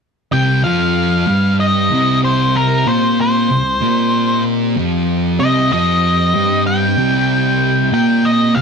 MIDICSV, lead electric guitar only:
0, 0, Header, 1, 2, 480
1, 0, Start_track
1, 0, Key_signature, -3, "minor"
1, 0, Tempo, 632911
1, 248, Time_signature, 4, 2, 24, 8
1, 6535, End_track
2, 0, Start_track
2, 0, Title_t, "Lead electric guitar"
2, 0, Program_c, 0, 29
2, 249, Note_on_c, 0, 79, 94
2, 482, Note_off_c, 0, 79, 0
2, 485, Note_on_c, 0, 77, 99
2, 1177, Note_off_c, 0, 77, 0
2, 1214, Note_on_c, 0, 75, 95
2, 1662, Note_off_c, 0, 75, 0
2, 1702, Note_on_c, 0, 72, 84
2, 1943, Note_off_c, 0, 72, 0
2, 1944, Note_on_c, 0, 70, 85
2, 2181, Note_on_c, 0, 72, 84
2, 2185, Note_off_c, 0, 70, 0
2, 2423, Note_off_c, 0, 72, 0
2, 2435, Note_on_c, 0, 72, 82
2, 3353, Note_off_c, 0, 72, 0
2, 4093, Note_on_c, 0, 75, 87
2, 4335, Note_off_c, 0, 75, 0
2, 4344, Note_on_c, 0, 75, 93
2, 5026, Note_off_c, 0, 75, 0
2, 5056, Note_on_c, 0, 79, 93
2, 6012, Note_off_c, 0, 79, 0
2, 6021, Note_on_c, 0, 79, 92
2, 6258, Note_on_c, 0, 75, 77
2, 6260, Note_off_c, 0, 79, 0
2, 6482, Note_on_c, 0, 77, 89
2, 6498, Note_off_c, 0, 75, 0
2, 6535, Note_off_c, 0, 77, 0
2, 6535, End_track
0, 0, End_of_file